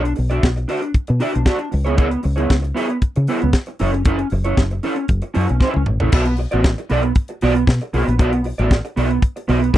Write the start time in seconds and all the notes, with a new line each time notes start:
Already playing: B1 D4
0.04 muted clean electric guitar stroke, closed hi-hat
0.16 B1, muted clean electric guitar stroke, open hi-hat
0.30 D4 F#4 A4 D5, closed hi-hat
0.43 B1, kick, snare
0.57 muted clean electric guitar stroke, closed hi-hat
0.68 D4 F#4 A4 D5, open hi-hat
0.82 muted clean electric guitar stroke, closed hi-hat
0.94 muted fingered electric bass stroke, kick, closed hi-hat
1.07 B2, muted clean electric guitar stroke, closed hi-hat
1.20 D4 F#4 A4 D5, open hi-hat
1.34 B1, muted clean electric guitar stroke, closed hi-hat
1.45 D4 F#4 A4 D5, kick, snare
1.59 muted clean electric guitar stroke, closed hi-hat
1.71 C#2, muted clean electric guitar stroke, open hi-hat
1.85 B3 E4 G#4 C#5, closed hi-hat
1.96 B3 E4 G#4 C#5, kick, closed hi-hat
2.10 muted clean electric guitar stroke, closed hi-hat
2.23 C#2, muted clean electric guitar stroke, open hi-hat
2.36 B3 E4 G#4 C#5, closed hi-hat
2.50 C#2, kick, snare
2.62 muted clean electric guitar stroke, closed hi-hat
2.74 B3 E4 G#4 C#5, open hi-hat
2.90 muted clean electric guitar stroke, closed hi-hat
3.02 muted fingered electric bass stroke, kick, closed hi-hat
3.16 C#3, muted clean electric guitar stroke, closed hi-hat
3.27 B3 E4 G#4 C#5, open hi-hat
3.42 C#2, muted clean electric guitar stroke, closed hi-hat
3.53 muted clean electric guitar stroke, kick, snare
3.66 muted clean electric guitar stroke, closed hi-hat
3.79 F#1 C#4 E4 A4 C#5, open hi-hat
3.93 muted clean electric guitar stroke, closed hi-hat
4.05 C#4 E4 A4 C#5, kick, closed hi-hat
4.19 muted clean electric guitar stroke, closed hi-hat
4.30 F#1, muted clean electric guitar stroke, open hi-hat
4.44 C#4 E4 A4 C#5, closed hi-hat
4.57 F#1, kick, snare
4.71 muted clean electric guitar stroke, closed hi-hat
4.83 C#4 E4 A4 C#5, open hi-hat
4.96 muted clean electric guitar stroke, closed hi-hat
5.08 F#1, kick, closed hi-hat
5.22 muted clean electric guitar stroke, closed hi-hat
5.34 F#2 C#4 E4 A4 C#5, open hi-hat
5.49 B1, muted clean electric guitar stroke, closed hi-hat
5.60 C#4 E4 A4 C#5, kick, snare
5.74 C#2, muted clean electric guitar stroke, high tom
5.86 A1, muted clean electric guitar stroke, mid tom
6.00 A#1 C#4 E4 A4 C#5, floor tom
6.12 B1 B3 F#4 A4 D5, kick, crash
6.26 muted clean electric guitar stroke, closed hi-hat
6.37 muted clean electric guitar stroke, open hi-hat
6.51 A1 B3 F#4 A4 D5, closed hi-hat
6.64 kick, snare
6.78 muted clean electric guitar stroke, closed hi-hat
6.89 B1 B3 F#4 A4 D5, open hi-hat
7.03 muted clean electric guitar stroke, closed hi-hat
7.15 kick, closed hi-hat
7.28 muted clean electric guitar stroke, closed hi-hat
7.41 B1 B3 F#4 A4 D5, open hi-hat
7.55 muted clean electric guitar stroke, closed hi-hat
7.67 B2, muted clean electric guitar stroke, kick, snare
7.81 muted clean electric guitar stroke, closed hi-hat
7.93 B1 B3 F#4 A4 D5, open hi-hat
8.07 A#1, muted clean electric guitar stroke, closed hi-hat
8.19 B1 B3 F#4 A4 D5, kick, closed hi-hat
8.33 muted clean electric guitar stroke, closed hi-hat
8.44 muted clean electric guitar stroke, open hi-hat
8.58 A1 B3 F#4 A4 D5, closed hi-hat
8.71 kick, snare
8.85 muted clean electric guitar stroke, closed hi-hat
8.96 B1 B3 F#4 A4 D5, open hi-hat
9.10 muted clean electric guitar stroke, closed hi-hat
9.22 kick, closed hi-hat
9.36 muted clean electric guitar stroke, closed hi-hat
9.48 B1 B3 F#4 A4 D5, open hi-hat
9.61 muted clean electric guitar stroke, closed hi-hat
9.73 B2 B3 F#4 A4, kick